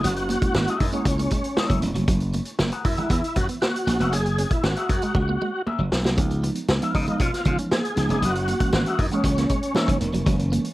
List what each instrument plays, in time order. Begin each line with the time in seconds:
0.04 slap bass F#1, clean electric guitar F#3, tonewheel organ F#4, closed hi-hat
0.16 muted clean electric guitar stroke, closed hi-hat
0.29 clean electric guitar A#3, closed hi-hat, muted conga
0.41 tine electric piano G#3 A#3 C#4 E4, kick, closed hi-hat
0.55 slap bass G#1, clean electric guitar A#3, tonewheel organ F#4, snare, high conga
0.68 clean electric guitar G#4 A#4 E5, muted clean electric guitar stroke, closed hi-hat
0.80 slap bass F#2, tonewheel organ D#4, kick, open hi-hat
0.92 tine electric piano G#3 A#3 C#4 E4, clean electric guitar G#3 G#4 A#4 F#5, tonewheel organ C#4, closed hi-hat
1.05 slap bass C#2, muted clean electric guitar stroke, kick, closed hi-hat, muted conga
1.19 clean electric guitar A#3, closed hi-hat
1.30 clean electric guitar G#3, kick, closed hi-hat, muted conga
1.44 closed hi-hat
1.57 tine electric piano G#3 A#3 C#4 E4, clean electric guitar G#4 A#4 E5, snare, high conga
1.70 slap bass F#1, clean electric guitar F#3, kick, closed hi-hat
1.82 slap bass E1, muted clean electric guitar stroke, closed hi-hat
1.94 slap bass F1, clean electric guitar F#3, closed hi-hat, high conga
2.08 slap bass F#1, clean electric guitar F#3, kick, closed hi-hat
2.20 muted clean electric guitar stroke, closed hi-hat
2.33 clean electric guitar A#3, closed hi-hat, muted conga
2.45 closed hi-hat
2.59 slap bass F#1, clean electric guitar A#3, snare, high conga
2.72 clean electric guitar G#4 A#4 F#5, muted clean electric guitar stroke, closed hi-hat
2.85 slap bass F#2, tonewheel organ E4, kick, open hi-hat
2.97 clean electric guitar G#3 G#4 A#4 F#5, closed hi-hat, low conga
3.10 slap bass E2, clean electric guitar B3, kick, closed hi-hat
3.24 closed hi-hat
3.35 slap bass F#2, tonewheel organ F#4, muted clean electric guitar stroke, kick, closed hi-hat, muted conga, low conga
3.49 clean electric guitar B3, closed hi-hat
3.62 tonewheel organ F#4, muted clean electric guitar stroke, snare, high conga
3.76 closed hi-hat
3.87 slap bass A#1, clean electric guitar A#3, snare, closed hi-hat
3.99 slap bass F1, clean electric guitar B3 G#4 A#4 E5, closed hi-hat, high conga
4.12 slap bass F#1, clean electric guitar C#4, tonewheel organ G#4, closed hi-hat
4.26 muted clean electric guitar stroke, closed hi-hat
4.38 clean electric guitar C#4, closed hi-hat, muted conga
4.51 tonewheel organ E4, kick, closed hi-hat
4.64 slap bass G#1, clean electric guitar C#4, tonewheel organ F#4, snare, high conga
4.76 clean electric guitar G#4 A#4 E5, muted clean electric guitar stroke, closed hi-hat
4.89 slap bass F#2, kick, closed hi-hat
5.02 clean electric guitar G#3 G#4 A#4 F#5, closed hi-hat
5.15 slap bass C#2, muted clean electric guitar stroke, kick, muted conga
5.29 clean electric guitar A#3
5.42 clean electric guitar G#3, muted conga
5.66 clean electric guitar G#4 A#4 E5, high conga
5.79 slap bass F#1, clean electric guitar F#3
5.92 slap bass B1, muted clean electric guitar stroke, snare
6.04 slap bass C2, clean electric guitar F#3, snare, high conga
6.17 slap bass C#2, tine electric piano F3 G#3 B3 D#4, clean electric guitar C#4, kick, closed hi-hat
6.31 muted clean electric guitar stroke, closed hi-hat
6.44 clean electric guitar B3, closed hi-hat, muted conga
6.55 closed hi-hat
6.68 slap bass C#2, clean electric guitar B3, snare, high conga
6.82 tine electric piano F3 G#3 B3 D#4, clean electric guitar F4 B4 F5, muted clean electric guitar stroke, closed hi-hat
6.94 slap bass C#3, tonewheel organ D#4, kick, open hi-hat
7.07 clean electric guitar G#3 F4 B4 F5, closed hi-hat, low conga
7.20 slap bass B2, clean electric guitar C#4, tonewheel organ F4, kick, closed hi-hat, muted conga
7.34 snare, closed hi-hat
7.45 slap bass C#3, tine electric piano F3 G#3 B3 D#4, tonewheel organ F4, muted clean electric guitar stroke, kick, closed hi-hat, muted conga, low conga
7.58 clean electric guitar C#4, closed hi-hat
7.71 tonewheel organ G#4, muted clean electric guitar stroke, snare, high conga
7.85 closed hi-hat
7.96 slap bass C#2, tine electric piano F3 G#3 B3 D#4, clean electric guitar B3, snare, closed hi-hat
8.09 slap bass F1, clean electric guitar C#4 F4 B4 D#5, closed hi-hat, high conga
8.22 slap bass F#1, clean electric guitar F#3, tonewheel organ F#4, closed hi-hat
8.35 muted clean electric guitar stroke, closed hi-hat
8.48 clean electric guitar A#3, closed hi-hat, muted conga
8.60 tine electric piano E3 G#3 A#3 C#4, kick, closed hi-hat
8.73 slap bass G#1, clean electric guitar A#3, tonewheel organ F#4, snare, high conga
8.86 clean electric guitar G#4 A#4 E5, muted clean electric guitar stroke, closed hi-hat
8.99 slap bass F#2, tonewheel organ D#4, kick, open hi-hat
9.11 tine electric piano E3 G#3 A#3 C#4, clean electric guitar G#3 G#4 A#4 F#5, tonewheel organ C#4, closed hi-hat
9.24 slap bass C#2, muted clean electric guitar stroke, kick, closed hi-hat
9.37 clean electric guitar A#3, snare, closed hi-hat
9.49 clean electric guitar G#3, kick, closed hi-hat, muted conga
9.63 closed hi-hat
9.75 tine electric piano E3 G#3 A#3 D#4 C5, clean electric guitar G#4 A#4 E5, snare, high conga
9.88 slap bass F#1, clean electric guitar F#3, kick, closed hi-hat
10.01 slap bass E1, tine electric piano A#4, muted clean electric guitar stroke, closed hi-hat
10.13 slap bass F1, clean electric guitar F#3, closed hi-hat, high conga
10.26 slap bass F#1, tine electric piano E3 G#3 A#3 C#4, clean electric guitar F#3, kick, closed hi-hat
10.39 muted clean electric guitar stroke, closed hi-hat
10.52 clean electric guitar A#3, closed hi-hat, muted conga
10.65 closed hi-hat